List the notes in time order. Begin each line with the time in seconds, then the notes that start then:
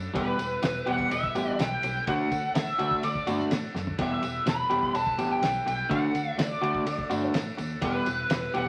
Already playing: F#3 A3 D4 A4
0.14 E1 E3 G3 B3 E4 G4 B4, kick, ride, tambourine
0.38 E1, muted clean electric guitar stroke, ride, tambourine
0.62 E1, muted clean electric guitar stroke, snare, ride, tambourine
0.86 E1 E3 G3 B3 G4 F#5, ride
0.99 kick
1.11 E1 E5, muted clean electric guitar stroke, ride, tambourine
1.23 kick
1.35 A1 E3 G3 B3 G4, ride, tambourine
1.59 B1 G5, muted clean electric guitar stroke, snare, ride, tambourine
1.82 B1, muted clean electric guitar stroke, ride, tambourine
2.06 D2 D3 F#3 A3 D4 F#4 A4 F#5, kick, ride, tambourine
2.31 D2, muted clean electric guitar stroke, kick, ride, tambourine
2.55 D2 E5, muted clean electric guitar stroke, snare, ride, tambourine
2.79 D2 D3 A3 D4 F#4, ride, tambourine
2.91 kick
3.03 D2 D5, muted clean electric guitar stroke, ride, tambourine
3.15 kick
3.27 G2 D3 A3 D4 F#4, ride, tambourine
3.40 snare
3.50 A2, muted clean electric guitar stroke, snare, ride, tambourine
3.74 F#2, muted clean electric guitar stroke, snare, tambourine
3.87 floor tom
3.97 E1 E3 G3 B3 E4 G4 B4, kick, ride, tambourine
4.02 E5
4.23 E1, muted clean electric guitar stroke, ride, tambourine
4.46 E1 B5, muted clean electric guitar stroke, snare, ride, tambourine
4.70 E1 E3 G3 B3 G4, ride
4.83 kick
4.94 E1 A5, muted clean electric guitar stroke, ride, tambourine
5.07 kick
5.18 A1 E3 G3 B3 G4, ride, tambourine
5.31 G5
5.41 B1, muted clean electric guitar stroke, snare, ride, tambourine
5.66 B1 G5, muted clean electric guitar stroke, ride, tambourine
5.89 D2 D3 F#3 A3 D4 F#4 A4 F#5, kick, ride, tambourine
6.13 D2, muted clean electric guitar stroke, ride, tambourine
6.38 D2 D5, muted clean electric guitar stroke, snare, ride, tambourine
6.61 D2 D3 A3 D4 F#4, ride
6.75 kick
6.86 D2, muted clean electric guitar stroke, ride, tambourine
6.98 kick
7.10 G2 D3 A3 D4 F#4, ride, tambourine
7.34 A2, muted clean electric guitar stroke, snare, ride, tambourine
7.57 D#2, muted clean electric guitar stroke, ride, tambourine
7.81 E1 E3 G3 B3 E4 G4 B4, kick, ride, tambourine
8.06 E1, muted clean electric guitar stroke, ride, tambourine
8.30 E1, muted clean electric guitar stroke, snare, ride, tambourine
8.54 E1 E3 G3 B3 G4 F#5, ride